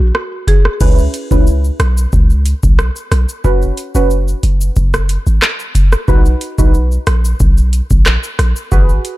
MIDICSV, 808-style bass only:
0, 0, Header, 1, 2, 480
1, 0, Start_track
1, 0, Tempo, 659341
1, 587, Time_signature, 4, 2, 24, 8
1, 6679, End_track
2, 0, Start_track
2, 0, Title_t, "808-style bass"
2, 0, Program_c, 0, 38
2, 0, Note_on_c, 0, 34, 86
2, 86, Note_off_c, 0, 34, 0
2, 588, Note_on_c, 0, 37, 98
2, 784, Note_off_c, 0, 37, 0
2, 954, Note_on_c, 0, 37, 86
2, 1243, Note_off_c, 0, 37, 0
2, 1308, Note_on_c, 0, 35, 91
2, 1504, Note_off_c, 0, 35, 0
2, 1550, Note_on_c, 0, 37, 105
2, 1849, Note_off_c, 0, 37, 0
2, 1917, Note_on_c, 0, 35, 83
2, 2112, Note_off_c, 0, 35, 0
2, 2268, Note_on_c, 0, 35, 87
2, 2372, Note_off_c, 0, 35, 0
2, 2509, Note_on_c, 0, 30, 103
2, 2704, Note_off_c, 0, 30, 0
2, 2874, Note_on_c, 0, 30, 83
2, 3163, Note_off_c, 0, 30, 0
2, 3227, Note_on_c, 0, 30, 87
2, 3423, Note_off_c, 0, 30, 0
2, 3470, Note_on_c, 0, 30, 103
2, 3769, Note_off_c, 0, 30, 0
2, 3834, Note_on_c, 0, 32, 91
2, 3926, Note_off_c, 0, 32, 0
2, 4428, Note_on_c, 0, 35, 110
2, 4624, Note_off_c, 0, 35, 0
2, 4794, Note_on_c, 0, 35, 93
2, 5082, Note_off_c, 0, 35, 0
2, 5147, Note_on_c, 0, 34, 85
2, 5343, Note_off_c, 0, 34, 0
2, 5389, Note_on_c, 0, 35, 107
2, 5688, Note_off_c, 0, 35, 0
2, 5756, Note_on_c, 0, 34, 90
2, 5952, Note_off_c, 0, 34, 0
2, 6108, Note_on_c, 0, 34, 91
2, 6212, Note_off_c, 0, 34, 0
2, 6348, Note_on_c, 0, 32, 106
2, 6544, Note_off_c, 0, 32, 0
2, 6679, End_track
0, 0, End_of_file